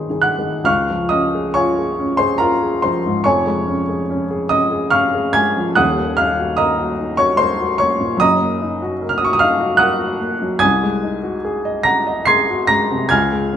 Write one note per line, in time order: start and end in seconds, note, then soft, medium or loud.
0.00 0.69 G#1 medium
0.00 0.10 D#3 soft
0.00 0.10 D#4 soft
0.00 0.11 G#4 medium
0.00 0.70 C5 medium
0.00 0.69 C#5 medium
0.00 0.69 C6 medium
0.00 0.66 C#6 medium
0.10 0.35 D#3 soft
0.10 0.35 D#4 soft
0.10 0.36 G#4 medium
0.22 0.64 F#5 medium
0.22 0.66 F#6 medium
0.39 0.64 D#3 soft
0.39 0.65 D#4 soft
0.39 0.65 G#4 soft
0.64 3.21 C#2 medium
0.64 1.08 F5 medium
0.64 1.08 C#6 medium
0.64 1.10 F6 loud
0.90 1.25 F3 medium
1.09 1.47 C#4 medium
1.09 1.52 D#5 medium
1.09 1.54 D#6 loud
1.35 1.69 G#4 medium
1.54 1.90 F4 medium
1.54 2.15 C#5 medium
1.54 2.15 G#5 medium
1.54 2.19 C#6 loud
1.79 2.12 G#4 medium
1.99 2.33 C#4 medium
2.17 2.54 G#4 medium
2.17 2.39 C5 medium
2.17 2.40 C6 loud
2.38 2.75 F4 medium
2.38 2.80 A#4 medium
2.38 2.83 A#5 loud
2.63 2.97 G#4 medium
2.82 3.19 F3 medium
2.82 3.23 C5 medium
2.82 3.26 C6 medium
3.06 3.27 G#2 medium
3.24 5.74 F1 medium
3.24 5.75 F2 medium
3.24 4.48 C#5 medium
3.24 4.48 G#5 medium
3.24 4.52 C#6 loud
3.47 3.80 G#3 medium
3.67 4.01 C#4 medium
3.89 4.23 G#4 soft
4.10 4.44 C#4 medium
4.31 4.65 G#4 medium
4.49 4.87 C#4 medium
4.49 4.91 D#5 medium
4.49 4.94 D#6 loud
4.72 5.07 G#4 medium
4.90 5.28 C#4 medium
4.90 5.32 F5 medium
4.90 5.32 C#6 medium
4.90 5.35 F6 loud
5.15 5.49 G#4 medium
5.33 5.70 G#3 medium
5.33 5.74 G#5 medium
5.33 5.77 G#6 loud
5.57 5.78 F3 medium
5.75 8.14 D#1 medium
5.75 8.15 D#2 medium
5.75 6.15 F#5 medium
5.75 6.15 D#6 medium
5.75 6.17 F#6 loud
5.99 6.31 A#3 medium
6.17 6.50 D#4 medium
6.17 6.55 F5 medium
6.17 6.57 F6 loud
6.39 6.70 F#4 medium
6.57 6.90 A#4 medium
6.57 7.13 D#5 medium
6.57 7.13 A#5 medium
6.57 7.17 D#6 medium
6.79 7.10 F#4 medium
6.99 7.30 D#4 medium
7.17 7.50 F#4 medium
7.17 7.37 C#5 medium
7.17 7.37 C#6 loud
7.37 7.71 A#4 medium
7.37 7.76 C5 medium
7.37 7.78 C6 loud
7.60 7.92 F#4 medium
7.78 8.13 A#3 medium
7.78 8.17 C#5 medium
7.78 8.20 C#6 loud
8.00 8.20 A#2 medium
8.17 10.58 F#2 medium
8.17 9.04 A#5 medium
8.17 9.07 D#6 loud
8.21 10.60 F#1 medium
8.21 9.04 D#5 medium
8.42 8.74 A#3 medium
8.62 8.93 D#4 medium
8.82 9.13 F#4 medium
9.02 9.33 A#4 medium
9.09 9.16 F6 medium
9.18 9.52 F#4 medium
9.18 9.25 D#6 medium
9.25 9.32 C#6 medium
9.33 9.41 D#6 loud
9.39 9.73 D#4 medium
9.39 9.77 F5 medium
9.39 9.80 F6 loud
9.60 9.93 F#4 medium
9.77 10.13 A#4 medium
9.77 10.18 F#5 medium
9.77 10.18 D#6 medium
9.77 10.20 F#6 loud
9.99 10.33 F#4 medium
10.21 10.54 A#3 medium
10.42 10.63 F#3 medium
10.59 13.08 C2 medium
10.59 11.81 G#5 medium
10.59 11.80 D#6 medium
10.59 11.84 G#6 loud
10.83 11.16 G#3 medium
11.03 11.36 D#4 medium
11.23 11.57 F#4 medium
11.45 11.78 G#4 medium
11.65 11.98 D#5 medium
11.83 12.20 F#5 medium
11.83 12.25 A#5 medium
11.83 12.27 A#6 loud
12.07 12.41 D#5 medium
12.25 12.62 G#4 medium
12.25 12.67 C6 medium
12.25 12.67 G#6 medium
12.25 12.69 C7 loud
12.51 12.84 F#4 medium
12.67 13.04 G#3 medium
12.67 13.08 A#5 medium
12.67 13.11 A#6 loud
12.91 13.12 C3 medium
13.09 13.57 C#2 medium
13.09 13.57 G#5 medium
13.09 13.57 F6 medium
13.09 13.57 G#6 loud
13.33 13.57 G#3 medium
13.53 13.57 C#4 medium